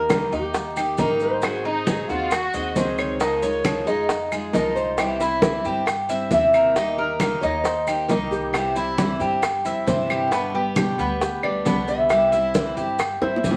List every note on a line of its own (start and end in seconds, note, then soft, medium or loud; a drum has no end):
0.00 0.26 D#2 medium
0.00 0.10 A#3 soft
0.00 0.30 A#4 medium
0.00 0.31 A#4 medium
0.10 0.31 D#3 medium
0.10 0.32 G3 medium
0.10 0.32 A#3 medium
0.10 0.32 D#4 medium
0.10 0.31 G4 medium
0.10 high bongo medium
0.10 high conga medium
0.10 claves medium
0.10 maracas medium
0.32 0.95 D#2 medium
0.32 0.54 A#3 soft
0.32 0.76 D#4 medium
0.32 0.54 D#4 soft
0.32 0.54 G4 soft
0.32 0.95 G4 medium
0.32 high bongo soft
0.32 high conga soft
0.32 maracas soft
0.54 muted steel-string acoustic guitar stroke medium
0.54 high bongo medium
0.54 high conga soft
0.54 maracas medium
0.76 0.98 A#3 soft
0.76 0.98 D#4 soft
0.76 0.98 G4 soft
0.76 0.98 G4 medium
0.76 high conga soft
0.76 claves medium
0.76 maracas medium
0.98 2.03 G#1 medium
0.98 1.41 D#3 medium
0.98 1.42 G3 medium
0.98 1.43 A#3 medium
0.98 1.42 D#4 medium
0.98 1.43 D#4 medium
0.98 1.43 G4 medium
0.98 1.20 A#4 medium
0.98 high bongo soft
0.98 low bongo medium
0.98 high conga medium
0.98 maracas medium
1.20 1.84 C5 medium
1.20 high bongo soft
1.20 high conga soft
1.20 maracas soft
1.42 1.64 D#3 medium
1.42 1.65 F#3 medium
1.42 1.65 C4 medium
1.42 1.65 D#4 medium
1.42 1.65 F#4 medium
1.42 1.63 G#4 medium
1.42 high bongo medium
1.42 high conga soft
1.42 claves medium
1.42 maracas medium
1.65 1.87 C4 soft
1.65 2.08 D#4 medium
1.65 2.07 D#4 medium
1.65 1.87 D#4 soft
1.65 1.86 G#4 soft
1.65 high bongo soft
1.65 high conga soft
1.87 2.09 D#3 medium
1.87 2.09 F#3 medium
1.87 2.09 C4 medium
1.87 2.09 D#4 medium
1.87 2.08 G#4 medium
1.87 high bongo medium
1.87 high conga medium
1.87 maracas medium
2.09 2.51 D#2 medium
2.09 2.31 C4 soft
2.09 2.31 D#4 soft
2.09 2.30 F4 medium
2.09 2.53 F#4 medium
2.09 2.31 G#4 soft
2.09 high bongo soft
2.09 high conga soft
2.09 maracas soft
2.31 2.65 F#4 medium
2.31 muted steel-string acoustic guitar stroke medium
2.31 high bongo medium
2.31 high conga soft
2.31 claves medium
2.31 maracas medium
2.54 2.75 D#2 medium
2.54 2.76 C4 soft
2.54 2.76 D#4 soft
2.54 2.75 G#4 soft
2.54 2.97 D#5 medium
2.54 high conga soft
2.54 maracas medium
2.76 3.81 C#2 medium
2.76 3.20 D#3 medium
2.76 3.20 F#3 medium
2.76 3.20 C4 medium
2.76 3.21 D#4 medium
2.76 3.21 G#4 medium
2.76 3.20 C5 loud
2.76 high bongo soft
2.76 low bongo medium
2.76 high conga medium
2.76 maracas medium
2.98 3.20 C#5 medium
2.98 high bongo soft
2.98 high conga soft
2.98 claves medium
2.98 maracas soft
3.20 3.42 C#3 medium
3.20 3.42 F3 medium
3.20 3.43 G#3 medium
3.20 3.42 D#4 medium
3.20 3.43 D#4 medium
3.20 3.42 F4 medium
3.20 3.83 A#4 medium
3.20 high bongo medium
3.20 high conga soft
3.20 maracas medium
3.43 3.65 G#3 soft
3.43 3.65 D#4 soft
3.43 3.64 F4 soft
3.43 3.86 C#5 medium
3.43 high bongo soft
3.43 high conga soft
3.43 maracas medium
3.64 3.86 C#3 medium
3.64 3.86 F3 medium
3.64 3.87 G#3 medium
3.64 3.87 D#4 medium
3.64 3.86 F4 medium
3.64 high bongo medium
3.64 high conga medium
3.64 claves medium
3.64 maracas medium
3.86 4.50 F2 medium
3.86 4.09 G#3 soft
3.86 4.30 D#4 medium
3.86 4.09 D#4 soft
3.86 4.08 F4 soft
3.86 4.49 G#4 medium
3.86 high bongo soft
3.86 high conga soft
3.86 maracas soft
4.09 muted steel-string acoustic guitar stroke medium
4.09 high bongo medium
4.09 high conga soft
4.09 maracas medium
4.32 4.54 G#3 soft
4.32 4.54 D#4 soft
4.32 4.53 F4 medium
4.32 4.53 G#4 medium
4.32 high conga soft
4.32 claves medium
4.32 maracas medium
4.53 5.59 C2 medium
4.53 4.98 F3 medium
4.53 4.98 G#3 medium
4.53 4.97 D#4 medium
4.53 4.98 D#4 medium
4.53 4.99 F4 medium
4.53 4.74 A#4 medium
4.53 high bongo soft
4.53 low bongo medium
4.53 high conga medium
4.53 maracas medium
4.76 5.38 C5 medium
4.76 high bongo soft
4.76 high conga soft
4.76 maracas soft
4.98 5.19 C3 medium
4.98 5.20 E3 medium
4.98 5.20 G3 medium
4.98 5.20 C4 medium
4.98 5.19 E4 medium
4.98 5.20 G4 medium
4.98 high bongo medium
4.98 high conga soft
4.98 claves medium
4.98 maracas medium
5.20 5.42 G3 soft
5.20 5.42 C4 soft
5.20 5.41 E4 soft
5.20 5.64 E4 medium
5.20 high bongo soft
5.20 high conga soft
5.20 maracas medium
5.42 5.64 C3 medium
5.42 5.64 E3 medium
5.42 5.64 G3 medium
5.42 5.65 C4 medium
5.42 5.63 E4 medium
5.42 high bongo medium
5.42 high conga medium
5.42 maracas medium
5.64 6.28 G2 medium
5.64 5.85 G3 soft
5.64 5.86 C4 soft
5.64 5.86 E4 soft
5.64 6.08 G4 medium
5.64 high bongo soft
5.64 high conga soft
5.64 maracas soft
5.86 muted steel-string acoustic guitar stroke medium
5.86 high bongo medium
5.86 high conga soft
5.86 claves medium
5.86 maracas medium
6.09 6.31 G3 soft
6.09 6.31 C4 soft
6.09 6.30 E4 soft
6.09 6.53 E5 medium
6.09 high conga soft
6.09 maracas medium
6.31 7.36 D#2 medium
6.31 6.75 C3 medium
6.31 6.75 G3 medium
6.31 6.76 C4 medium
6.31 6.76 E4 medium
6.31 6.73 E5 loud
6.31 high bongo soft
6.31 low bongo medium
6.31 high conga medium
6.31 maracas medium
6.54 6.75 A#4 medium
6.54 high bongo soft
6.54 high conga soft
6.54 claves medium
6.54 maracas soft
6.76 6.97 D#3 medium
6.76 6.98 G3 medium
6.76 6.98 A#3 medium
6.76 6.97 D#4 medium
6.76 6.98 D#4 medium
6.76 6.97 G4 medium
6.76 7.41 D#5 medium
6.76 high bongo medium
6.76 high conga soft
6.76 maracas medium
6.98 7.19 A#3 soft
6.98 7.20 D#4 soft
6.98 7.19 G4 soft
6.98 7.41 A#4 medium
6.98 high bongo soft
6.98 high conga soft
7.19 7.41 D#3 medium
7.19 7.41 G3 medium
7.19 7.42 A#3 medium
7.19 7.42 D#4 medium
7.19 7.40 G4 medium
7.19 high bongo medium
7.19 high conga medium
7.19 claves medium
7.19 maracas medium
7.41 8.05 D#2 medium
7.41 7.64 A#3 soft
7.41 7.64 D#4 soft
7.41 7.86 D#4 medium
7.41 7.63 G4 soft
7.41 7.63 C#5 medium
7.41 high bongo soft
7.41 high conga soft
7.41 maracas soft
7.64 8.06 C5 medium
7.64 muted steel-string acoustic guitar stroke medium
7.64 high bongo medium
7.64 high conga soft
7.64 maracas medium
7.87 8.08 A#3 soft
7.87 8.09 D#4 soft
7.87 8.08 G4 medium
7.87 8.09 G4 medium
7.87 high conga soft
7.87 claves medium
7.87 maracas medium
8.08 9.14 C2 medium
8.08 8.52 D#3 medium
8.08 8.53 G3 medium
8.08 8.53 A#3 medium
8.08 8.53 D#4 medium
8.08 8.54 G4 medium
8.08 8.14 A#4 medium
8.08 high bongo soft
8.08 low bongo medium
8.08 high conga medium
8.08 maracas medium
8.31 8.94 G4 medium
8.31 high bongo soft
8.31 high conga soft
8.31 maracas soft
8.53 8.75 C3 medium
8.53 8.75 E3 medium
8.53 8.75 G3 medium
8.53 8.75 C4 medium
8.53 8.74 E4 medium
8.53 8.76 G4 medium
8.53 high bongo medium
8.53 high conga soft
8.53 claves medium
8.53 maracas medium
8.75 8.98 G3 soft
8.75 8.98 C4 soft
8.75 8.97 E4 soft
8.75 9.19 E4 medium
8.75 high bongo soft
8.75 high conga soft
8.75 maracas medium
8.98 9.19 C3 medium
8.98 9.20 E3 medium
8.98 9.20 G3 medium
8.98 9.20 C4 medium
8.98 9.18 E4 medium
8.98 high bongo medium
8.98 high conga loud
8.98 maracas medium
9.19 9.62 G2 medium
9.19 9.42 G3 soft
9.19 9.42 C4 soft
9.19 9.41 E4 soft
9.19 9.64 G4 medium
9.19 high bongo soft
9.19 high conga soft
9.19 maracas soft
9.42 muted steel-string acoustic guitar stroke medium
9.42 high bongo medium
9.42 high conga soft
9.42 claves medium
9.42 maracas medium
9.65 9.86 F2 medium
9.65 9.87 G3 soft
9.65 9.87 C4 soft
9.65 9.86 E4 soft
9.65 10.09 E5 medium
9.65 high conga soft
9.65 maracas medium
9.86 10.93 G2 medium
9.86 10.31 C3 medium
9.86 10.31 E3 medium
9.86 10.31 G3 medium
9.86 10.31 C4 medium
9.86 10.32 E4 medium
9.86 10.29 C5 medium
9.86 high bongo soft
9.86 low bongo medium
9.86 high conga medium
9.86 maracas medium
10.10 10.32 G4 medium
10.10 high bongo soft
10.10 high conga soft
10.10 claves medium
10.10 maracas soft
10.31 10.53 B2 medium
10.31 10.53 D3 medium
10.31 10.54 G3 medium
10.31 10.54 B3 medium
10.31 10.53 G4 medium
10.31 10.74 B4 medium
10.31 high bongo medium
10.31 high conga soft
10.31 maracas medium
10.54 10.77 G3 soft
10.54 10.76 B3 soft
10.54 10.76 G4 soft
10.54 10.98 G4 medium
10.54 high bongo soft
10.54 high conga soft
10.76 10.98 B2 medium
10.76 10.98 D3 medium
10.76 10.99 G3 medium
10.76 10.99 B3 medium
10.76 11.18 G4 medium
10.76 10.97 G4 medium
10.76 high bongo medium
10.76 high conga medium
10.76 claves medium
10.76 maracas medium
10.98 11.61 D2 medium
10.98 11.21 G3 soft
10.98 11.42 B3 medium
10.98 11.21 B3 soft
10.98 11.20 G4 soft
10.98 high bongo soft
10.98 high conga soft
10.98 maracas soft
11.21 11.44 G4 medium
11.21 muted steel-string acoustic guitar stroke medium
11.21 high bongo medium
11.21 high conga soft
11.21 maracas medium
11.43 11.65 G3 soft
11.43 11.65 B3 soft
11.43 11.65 D4 medium
11.43 11.64 G4 soft
11.43 11.85 D5 medium
11.43 high conga soft
11.43 claves medium
11.65 12.71 C2 medium
11.65 12.09 B2 medium
11.65 12.09 D3 medium
11.65 12.10 G3 medium
11.65 12.09 B3 medium
11.65 12.10 B3 medium
11.65 12.10 G4 medium
11.65 high bongo soft
11.65 low bongo medium
11.65 high conga medium
11.65 maracas medium
11.88 13.40 E5 medium
11.88 high bongo soft
11.88 high conga soft
11.88 maracas soft
12.10 12.31 C3 medium
12.10 12.32 E3 medium
12.10 12.32 G3 medium
12.10 12.32 C4 medium
12.10 12.32 E4 medium
12.10 12.32 G4 medium
12.10 high bongo medium
12.10 high conga soft
12.10 claves medium
12.10 maracas medium
12.32 12.55 G3 soft
12.32 12.55 C4 soft
12.32 12.76 E4 medium
12.32 12.54 E4 soft
12.32 high bongo soft
12.32 high conga soft
12.32 maracas medium
12.54 12.77 C3 medium
12.54 12.77 E3 medium
12.54 12.77 G3 medium
12.54 12.77 C4 medium
12.54 12.77 E4 medium
12.54 high bongo medium
12.54 high conga medium
12.54 maracas medium
12.77 13.19 G2 medium
12.77 12.99 G3 soft
12.77 12.99 C4 soft
12.77 12.99 E4 soft
12.77 13.20 G4 medium
12.77 high bongo soft
12.77 high conga soft
12.77 maracas soft
12.99 muted steel-string acoustic guitar stroke medium
12.99 high bongo medium
12.99 high conga soft
12.99 claves medium
12.99 maracas medium
13.21 13.42 G2 medium
13.21 13.43 G3 soft
13.21 13.43 C4 soft
13.21 13.43 E4 soft
13.21 13.57 C5 medium
13.21 13.57 E5 medium
13.21 high bongo medium
13.21 high conga soft
13.36 low bongo medium
13.43 13.57 F2 medium
13.43 13.57 C3 medium
13.43 13.57 E3 medium
13.43 13.57 G3 medium
13.43 13.57 C4 medium
13.43 13.57 E4 medium
13.43 high conga medium
13.43 maracas medium
13.51 low bongo medium